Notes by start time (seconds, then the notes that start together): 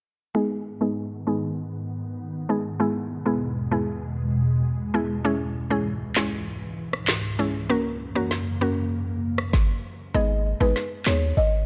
0.35 G#2 D#3 G#3 B3 D#4 G#4
0.81 G#3 B3 D#4 G#4
1.27 G#3 B3 D#4 G#4
2.49 G#3 B3 D#4 G#4
2.80 E2 B2 G#3 B3 E4 G#4
3.26 G#3 B3 E4 G#4
3.71 G#3 B3 E4 G#4
4.94 G#3 B3 E4 G#4
5.25 C#2 G#2 E3 G#3 C#4 E4 G#4
5.70 G#3 C#4 E4 G#4
6.16 G#3 C#4 E4 G#4, snare, clap
6.93 cross-stick
7.08 snare, clap
7.39 G#3 C#4 E4 G#4
7.70 F#2 C#3 A#3 C#4 F#4 A#4
8.15 A#3 C#4 F#4 A#4
8.31 snare
8.61 A#3 C#4 F#4 A#4
9.38 cross-stick
9.53 kick, snare
10.14 G#1 G#3 B3 D#4 G#4 D#5
10.60 G#1 G#3 B3 D#4 G#4 B4
10.76 snare
11.06 D#2 G#3 B3 D#4 G#4 C#5, snare, clap
11.37 G#1 D#5